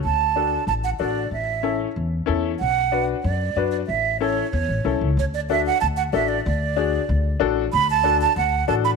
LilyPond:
<<
  \new Staff \with { instrumentName = "Flute" } { \time 4/4 \key d \lydian \tempo 4 = 187 a''2 a''8 fis''8 d''4 | e''4. r2 r8 | fis''4. r8 d''4. d''8 | e''4 cis''4 cis''4. r8 |
cis''8 d''8 e''8 fis''8 a''8 fis''8 e''8 d''8 | d''2. r4 | b''8 a''4 a''8 fis''4 a''8 b''8 | }
  \new Staff \with { instrumentName = "Upright piano" } { \time 4/4 \key d \lydian r4 <d' fis' a'>8 r4. <d' fis' a'>8 r8 | r4 <cis' e' a'>8 r4. <cis' e' a'>8 r8 | r4 <d' fis' b'>8 r4. <d' fis' b'>8 r8 | r4 <cis' e' a'>8 r4. <cis' e' a'>8 r8 |
r4 <d' fis' a'>8 r4. <d' fis' a'>8 r8 | r4 <d' fis' gis'>8 r4. <d' fis' a'>8 r8 | r4 <d' fis' a'>8 r4. <d' fis' a'>8 r8 | }
  \new Staff \with { instrumentName = "Upright bass" } { \clef bass \time 4/4 \key d \lydian d,2 a,,4 a,,4 | a,,2 e,4 e,4 | b,,2 fis,4 fis,4 | a,,2 e,8 a,,8 b,,8 cis,8 |
d,2 d,4 a,,4 | d,2 d,4 a,,4 | d,2 d,4 a,,4 | }
>>